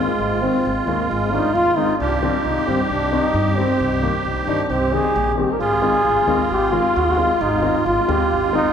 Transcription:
Already playing: trombone G#3, accordion F4
0.19 upright bass G#1
0.41 upright piano D#3 G#3 C4, trombone C4
0.65 upright bass G#1
0.86 upright bass D#2, upright piano D#3 G#3 C4, trombone A#3
1.09 upright bass G#1, trombone G#3
1.31 upright piano D#3 G#3 D4, trombone D#4
1.54 upright bass D#2, trombone F4
1.77 upright piano D#3 G#3 C4, trombone D#4
1.98 upright bass C2, trombone D4, accordion G4
2.21 upright piano D#3 G3 C4, trombone D4
2.44 upright bass C2, trombone D#4
2.67 upright bass G2, upright piano D#3 G3 C4, trombone C4
2.83 trombone D#4
2.90 upright bass C2, trombone D4
3.11 upright piano D#3 G3 C4, trombone D#4
3.34 upright bass G2
3.57 upright piano D#3 G3 C4, trombone C4
3.80 upright bass C2
4.02 upright piano D#3 G3 A#3
4.25 upright bass C2
4.46 upright bass G2, upright piano D#3 G3 D#4, trombone D4
4.68 upright bass C2, trombone C4, accordion G4
4.92 upright piano D#3 G3 C4, trombone G#4
5.15 upright bass A#1
5.37 upright piano D#3 G3 C4, trombone G4
5.53 trombone A#4
5.59 upright bass G#1, accordion F4, trombone G#4
5.82 upright piano D#3 G#3 C4
6.05 upright bass G#1
6.27 upright bass D#2, upright piano D#3 G#3 C4
6.50 upright bass G#1, trombone G4
6.71 upright piano D#3 G#3 C4, trombone F4
6.96 upright bass D#2
7.16 upright piano D#3 G#3 C4
7.41 upright bass G#1, trombone D#4
7.61 upright piano D#3 G#3 C4
7.86 upright bass G#1, trombone F4
8.07 upright bass D#2, upright piano D#3 G#3 C4, trombone G4
8.31 upright bass G#1
8.52 upright piano D#3 G#3 C4, trombone D#4

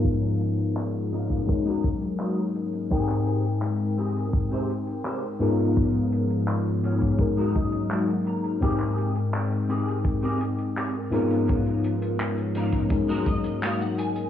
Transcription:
Already playing: clean electric guitar G#2 B3 C#4 D#4 F4 A#4, fm electric piano G#2 B3 D#4 F4 G#4 A#4, analog synth pad G#2 F3 B3 C#4 D#4 A#4
0.04 kick, closed hi-hat
0.22 closed hi-hat
0.40 closed hi-hat
0.59 closed hi-hat
0.76 clap, closed hi-hat
0.95 closed hi-hat
1.12 clean electric guitar G#2 B3 C#4 D#4 F4 A#4, closed hi-hat
1.30 kick, closed hi-hat
1.46 analog synth pad F#3 A#3 C#4 A#4, fm electric piano G#3 C#4 D#4 G#4 A#4, kick, closed hi-hat
1.65 clean electric guitar G#3 D#4 F#4 A#4, closed hi-hat
1.83 kick, closed hi-hat
2.01 muted clean electric guitar stroke, closed hi-hat
2.19 clean electric guitar G#3 D#4 F#4 A#4, clap, closed hi-hat
2.38 closed hi-hat
2.55 muted clean electric guitar stroke, closed hi-hat
2.73 closed hi-hat
2.90 fm electric piano G#2 C4 D#4 A#4 G5, analog synth pad G#3 C4 G5, clean electric guitar C4 G4 G#4 A#4, kick, closed hi-hat
3.08 clap, closed hi-hat
3.27 closed hi-hat
3.46 closed hi-hat
3.62 clap, closed hi-hat
3.80 closed hi-hat
3.97 clean electric guitar C4 G4 G#4 A#4, closed hi-hat
4.16 closed hi-hat
4.33 kick, closed hi-hat
4.51 clean electric guitar C4 G4 G#4 C5, closed hi-hat
4.69 closed hi-hat
4.87 muted clean electric guitar stroke, closed hi-hat
5.04 clean electric guitar C4 G4 G#4 C5, clap, closed hi-hat
5.22 closed hi-hat
5.39 fm electric piano G#2 B3 D#4 F4 G#4 A#4, clean electric guitar G#2 B3 C#4 D#4 F4 A#4, analog synth pad G#2 F3 B3 C#4, closed hi-hat
5.59 closed hi-hat
5.77 kick, closed hi-hat
5.94 closed hi-hat
6.12 closed hi-hat
6.30 closed hi-hat
6.48 clap, closed hi-hat
6.66 closed hi-hat
6.83 clean electric guitar G#2 B3 C#4 D#4 F4 C#5, closed hi-hat
7.01 kick, closed hi-hat
7.18 analog synth pad F#3 A#3 D#4, fm electric piano G#3 C#4 D#4 G#4 A#4, kick, closed hi-hat
7.36 clean electric guitar G#3 D#4 F#4 A#4, closed hi-hat
7.55 clean electric guitar D#5, kick, closed hi-hat
7.72 muted clean electric guitar stroke, closed hi-hat
7.90 clean electric guitar G#3 D#4 F#4 A#4 F#5, clap
8.10 closed hi-hat
8.26 clean electric guitar A#5, muted clean electric guitar stroke, closed hi-hat
8.44 closed hi-hat
8.60 fm electric piano G#2 C4 D#4 A#4 G5, analog synth pad G#3 C4 G5, clean electric guitar C4 G4 G#4 A#4, kick, closed hi-hat
8.79 clap, closed hi-hat
8.98 closed hi-hat
9.16 closed hi-hat
9.34 clap, closed hi-hat
9.52 closed hi-hat
9.69 clean electric guitar C4 G4 G#4 A#4, closed hi-hat
9.88 closed hi-hat
10.05 kick, closed hi-hat
10.23 clean electric guitar C4 G4 G#4 A#4, closed hi-hat
10.41 closed hi-hat
10.59 muted clean electric guitar stroke, closed hi-hat
10.76 clean electric guitar C4 G4 G#4 A#4, clap, closed hi-hat
10.94 closed hi-hat
11.10 fm electric piano G#2 B3 D#4 F4 G#4 A#4, analog synth pad G#2 F3 B3 C#4, clean electric guitar G#2 B3 C#4 D#4 F4 A#4, closed hi-hat
11.31 closed hi-hat
11.48 kick, closed hi-hat
11.66 closed hi-hat
11.84 closed hi-hat
12.02 closed hi-hat
12.20 clap, closed hi-hat
12.38 closed hi-hat
12.55 clean electric guitar G#2 B3 C#4 D#4 F4 A#4, closed hi-hat
12.72 kick, closed hi-hat
12.89 analog synth pad F#3 A#3 D#4 A#4, fm electric piano G#3 C#4 D#4 G#4 A#4, kick, closed hi-hat
13.08 clean electric guitar G#3 D#4 F#4 A#4, closed hi-hat
13.26 clean electric guitar D#5, kick, closed hi-hat
13.44 muted clean electric guitar stroke, closed hi-hat
13.62 clean electric guitar G#3 D#4 F#4 A#4 F5, clap, closed hi-hat
13.81 clean electric guitar F#5, closed hi-hat
13.98 clean electric guitar G#5, muted clean electric guitar stroke, closed hi-hat
14.16 closed hi-hat

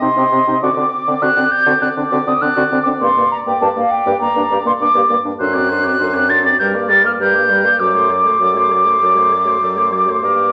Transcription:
Already playing: oboe D#5
0.01 bassoon C3, french horn C4, clarinet D#4, flute C6
0.16 bassoon C3, french horn C4, clarinet G4
0.32 bassoon C3, clarinet C4, french horn C4
0.47 bassoon C3, french horn C4, clarinet D#4
0.62 bassoon D3, french horn C4, clarinet F#4, oboe D5, flute D6
0.77 bassoon D3, clarinet C4, french horn C4
1.07 bassoon D3, clarinet C4, french horn C4
1.22 bassoon D3, french horn C4, clarinet F#4, flute F#6
1.37 bassoon D3, clarinet C4, french horn C4
1.51 flute G6
1.66 bassoon D3, french horn C4, clarinet F#4
1.82 bassoon D3, clarinet C4, french horn C4, flute F#6
1.97 bassoon D3, french horn C4, clarinet D4
2.11 bassoon D3, french horn C4, clarinet F#4, flute D6
2.26 bassoon D3, clarinet C4, french horn C4, flute D#6
2.41 bassoon D3, french horn C4, clarinet D4, flute F#6
2.57 bassoon D3, french horn C4, clarinet F#4
2.71 bassoon D3, clarinet C4, french horn C4
2.83 french horn C4, clarinet D4, flute D6
2.87 bassoon D3
3.01 bassoon G2, french horn A#3, clarinet G4, flute C6
3.16 bassoon G2, clarinet A#3, french horn A#3
3.31 flute A#5
3.46 bassoon G2, clarinet A#3, french horn A#3, flute G5
3.61 bassoon G2, french horn A#3, clarinet G4, flute A5
3.76 bassoon G2, french horn A#3, clarinet A#3, flute F5
3.91 flute G5
4.06 bassoon G2, french horn A#3, clarinet G4
4.21 bassoon G2, french horn A#3, clarinet A#3, flute A#5
4.35 bassoon G2, french horn A#3, clarinet D4
4.50 bassoon G2, french horn A#3, clarinet G4
4.65 bassoon G2, french horn A#3, clarinet A#3, flute C6
4.80 bassoon G2, french horn A#3, clarinet D4, flute D6
4.95 bassoon G2, french horn A#3, clarinet G4
5.10 bassoon G2, french horn A#3, clarinet A#3
5.25 bassoon G2, french horn A#3, clarinet D4
5.39 bassoon F#2, french horn D4, clarinet A4, oboe C5, flute F#6
5.54 french horn C4, clarinet F#4, oboe D5
5.69 french horn D4, clarinet A4, oboe C5
5.84 french horn C4, clarinet F#4, oboe D5
5.98 bassoon F#2, french horn D4, clarinet A4, oboe C5
6.14 french horn C4, clarinet F#4, oboe D5
6.29 french horn D4, clarinet A4, oboe C5, flute A6
6.45 french horn C4, clarinet F#4, oboe D5
6.59 bassoon G2, french horn G3, clarinet G4, oboe A#4, flute G6
6.74 french horn A#3, clarinet A#4, oboe D5
6.89 french horn G3, clarinet G4, oboe A#4, flute A6
7.05 french horn A#3, clarinet A#4, oboe D5, flute F6
7.20 bassoon G2, french horn G3, clarinet G4, oboe A#4, flute G6
7.34 french horn A#3, clarinet A#4, oboe D5
7.49 french horn G3, clarinet G4, oboe A#4
7.65 french horn A#3, clarinet A#4, oboe D5
7.79 bassoon F#2, french horn F#3, clarinet A4, oboe D5, flute D6
7.94 french horn A3, clarinet F#4, oboe C5
8.09 french horn F#3, clarinet A4, oboe D5
8.25 french horn A3, clarinet F#4, oboe C5
8.40 bassoon F#2, french horn F#3, clarinet A4, oboe D5
8.55 french horn A3, clarinet F#4, oboe C5
8.70 french horn F#3, clarinet A4, oboe D5
8.85 french horn A3, clarinet F#4, oboe C5
9.00 bassoon F#2, french horn F#3, clarinet A4, oboe D5
9.16 french horn A3, clarinet F#4, oboe C5
9.30 french horn F#3, clarinet A4, oboe D5
9.46 french horn A3, clarinet F#4, oboe C5
9.61 bassoon F#2, french horn F#3, clarinet A4, oboe D5
9.76 french horn A3, clarinet F#4, oboe C5
9.91 french horn F#3, clarinet A4, oboe D5
10.07 french horn A3, clarinet F#4, oboe C5
10.22 bassoon G2, french horn A#3, clarinet G4, oboe A#4, flute D6

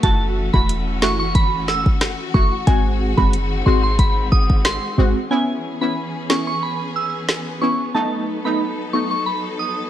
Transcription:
Already playing: string section A3
0.03 808-style bass F#1, string section E3 C#4 F#4, synth stab A3 E4 F#4, synth bell A5, kick, closed hi-hat
0.53 808-style bass E1, synth stab A3 E4 F#4, synth bell B5, kick
0.69 closed hi-hat
1.02 808-style bass F#1, synth stab A3 E4 F#4, synth bell C#6, snare
1.19 synth bell C#6
1.35 synth bell B5, kick, closed hi-hat
1.68 synth bell E6, snare
1.86 kick
2.01 cross-stick, snare, closed hi-hat
2.34 808-style bass F#1, synth stab A3 E4 F#4, synth bell C#6, kick
2.67 808-style bass G#1, string section D#3 G#3 C4, synth stab G#3 C4 F#4, synth bell G#5, kick, closed hi-hat
3.17 808-style bass F#1, synth stab G#3 C4 F#4, synth bell B5, kick
3.33 closed hi-hat
3.66 808-style bass G#1, synth stab G#3 C4 F#4, synth bell C6
3.83 synth bell C6
3.99 synth bell B5, kick, closed hi-hat
4.32 synth bell D#6, kick
4.50 kick
4.65 synth bell C6, cross-stick, snare, closed hi-hat
4.98 808-style bass G#1, synth stab G#3 C4 F#4
5.30 string section E3 B3 C#4 G#4, synth stab B3 C#4 E4, synth bell G#5
5.81 synth stab B3 C#4 E4, synth bell B5
6.29 synth stab B3 C#4 E4, synth bell C#6, snare
6.47 synth bell C#6
6.63 synth bell B5
6.96 synth bell E6
7.29 snare
7.61 synth stab B3 C#4 E4, synth bell C#6
7.94 string section F#3 D#4 A4, synth stab A3 B3 D#4, synth bell A5
8.45 synth stab A3 B3 D#4, synth bell B5
8.93 synth stab A3 B3 D#4, synth bell C#6
9.11 synth bell C#6
9.26 synth bell B5
9.59 synth bell D#6

